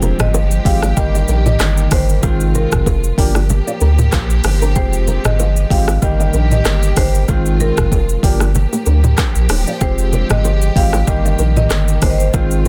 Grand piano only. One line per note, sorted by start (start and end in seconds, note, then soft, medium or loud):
0.00 0.29 F3 loud
0.00 0.29 G#3 medium
0.00 0.29 C4 medium
0.00 0.29 G4 loud
0.65 0.84 F3 medium
0.65 0.84 G#3 medium
0.65 0.84 C4 medium
0.65 0.85 G4 medium
0.97 2.14 D#3 medium
0.97 2.14 G3 medium
0.97 2.14 A#3 medium
0.97 2.14 G4 loud
2.23 2.82 D#3 medium
2.23 2.82 G#3 medium
2.23 2.82 C4 medium
2.23 2.82 F4 loud
3.18 3.37 F3 medium
3.18 3.37 A#3 medium
3.18 3.37 D4 medium
3.18 3.37 G4 medium
4.76 5.34 F3 medium
4.76 5.34 G#3 medium
4.76 5.35 C4 medium
4.76 5.35 G4 loud
5.70 5.90 F3 medium
5.70 5.90 G#3 medium
5.70 5.90 C4 medium
5.70 5.90 G4 medium
6.02 7.19 D#3 medium
6.02 7.19 G3 medium
6.02 7.19 A#3 medium
6.02 7.20 G4 loud
7.28 7.87 D#3 medium
7.28 7.87 G#3 medium
7.28 7.87 C4 medium
7.28 7.87 F4 loud
8.23 8.42 F3 medium
8.23 8.42 A#3 medium
8.23 8.42 D4 medium
8.23 8.43 G4 medium
9.81 10.40 F3 medium
9.81 10.40 G#3 medium
9.81 10.40 C4 medium
9.81 10.40 G4 loud
10.76 10.95 F3 medium
10.76 10.95 G#3 medium
10.76 10.95 C4 medium
10.76 10.95 G4 medium
11.07 12.25 D#3 medium
11.07 12.25 G3 medium
11.07 12.25 A#3 medium
11.07 12.25 G4 loud
12.34 12.68 D#3 medium
12.34 12.68 G#3 medium
12.34 12.68 C4 medium
12.34 12.68 F4 loud